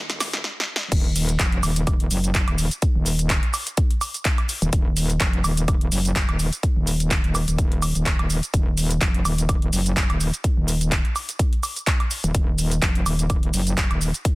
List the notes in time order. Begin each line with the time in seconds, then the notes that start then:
Already playing: D#1
0.10 snare, closed hi-hat, shaker
0.20 D#1, snare, open hi-hat, high woodblock, shaker
0.33 snare, closed hi-hat, shaker
0.44 snare
0.60 snare
0.76 snare
0.92 D#1, kick, closed hi-hat, crash, shaker
1.16 open hi-hat, shaker
1.29 closed hi-hat, shaker
1.39 F1, kick, clap, closed hi-hat, shaker
1.52 closed hi-hat
1.63 D#1, open hi-hat, high woodblock, shaker
1.76 closed hi-hat, shaker
1.87 kick, closed hi-hat, high woodblock, shaker
2.00 closed hi-hat
2.11 F#1, open hi-hat, shaker
2.24 closed hi-hat, shaker
2.35 kick, clap, closed hi-hat, shaker
2.48 D#1, closed hi-hat, high woodblock
2.58 open hi-hat, shaker
2.71 closed hi-hat, shaker
2.82 kick, closed hi-hat, shaker
2.95 D#1
3.06 open hi-hat, shaker
3.19 closed hi-hat, shaker
3.30 kick, clap, closed hi-hat, shaker
3.43 closed hi-hat
3.54 open hi-hat, high woodblock, shaker
3.67 closed hi-hat, shaker
3.77 kick, closed hi-hat, shaker
3.91 closed hi-hat
4.01 open hi-hat, high woodblock, shaker
4.14 closed hi-hat, shaker
4.25 kick, clap, closed hi-hat, shaker
4.38 closed hi-hat, high woodblock
4.49 open hi-hat, shaker
4.62 D#1, closed hi-hat, shaker
4.73 D#1, kick, closed hi-hat, shaker
4.97 open hi-hat, shaker
5.10 closed hi-hat, shaker
5.20 F1, kick, clap, closed hi-hat, shaker
5.33 closed hi-hat
5.44 D#1, open hi-hat, high woodblock, shaker
5.57 closed hi-hat, shaker
5.68 kick, closed hi-hat, high woodblock, shaker
5.81 closed hi-hat
5.92 F#1, open hi-hat, shaker
6.05 closed hi-hat, shaker
6.16 kick, clap, closed hi-hat, shaker
6.29 D#1, closed hi-hat, high woodblock
6.39 open hi-hat, shaker
6.53 closed hi-hat, shaker
6.63 kick, closed hi-hat, shaker
6.76 D#1
6.87 open hi-hat, shaker
7.00 closed hi-hat, shaker
7.11 kick, clap, closed hi-hat, shaker
7.24 D#1, closed hi-hat
7.35 open hi-hat, high woodblock, shaker
7.48 D#1, closed hi-hat, shaker
7.58 kick, closed hi-hat, shaker
7.72 closed hi-hat
7.82 open hi-hat, high woodblock, shaker
7.95 D#1, closed hi-hat, shaker
8.06 kick, clap, closed hi-hat, shaker
8.19 D#1, closed hi-hat, high woodblock
8.30 open hi-hat, shaker
8.43 closed hi-hat, shaker
8.54 D#1, kick, closed hi-hat, shaker
8.77 open hi-hat, shaker
8.91 closed hi-hat, shaker
9.01 F1, kick, clap, closed hi-hat, shaker
9.14 closed hi-hat
9.25 D#1, open hi-hat, high woodblock, shaker
9.38 closed hi-hat, shaker
9.49 kick, closed hi-hat, high woodblock, shaker
9.62 closed hi-hat
9.73 F#1, open hi-hat, shaker
9.86 closed hi-hat, shaker
9.97 kick, clap, closed hi-hat, shaker
10.10 D#1, closed hi-hat, high woodblock
10.21 open hi-hat, shaker
10.34 closed hi-hat, shaker
10.44 kick, closed hi-hat, shaker
10.57 D#1
10.68 open hi-hat, shaker
10.81 closed hi-hat, shaker
10.92 kick, clap, closed hi-hat, shaker
11.05 closed hi-hat
11.16 open hi-hat, high woodblock, shaker
11.29 closed hi-hat, shaker
11.39 kick, closed hi-hat, shaker
11.53 closed hi-hat
11.63 open hi-hat, high woodblock, shaker
11.76 closed hi-hat, shaker
11.87 kick, clap, closed hi-hat, shaker
12.00 closed hi-hat, high woodblock
12.11 open hi-hat, shaker
12.24 D#1, closed hi-hat, shaker
12.35 D#1, kick, closed hi-hat, shaker
12.58 open hi-hat, shaker
12.71 closed hi-hat, shaker
12.82 F1, kick, clap, closed hi-hat, shaker
12.95 closed hi-hat
13.06 D#1, open hi-hat, high woodblock, shaker
13.19 closed hi-hat, shaker
13.30 kick, closed hi-hat, high woodblock, shaker
13.43 closed hi-hat
13.54 F#1, open hi-hat, shaker
13.67 closed hi-hat, shaker
13.77 kick, clap, closed hi-hat, shaker
13.91 D#1, closed hi-hat, high woodblock
14.01 open hi-hat, shaker
14.14 closed hi-hat, shaker
14.25 kick, closed hi-hat, shaker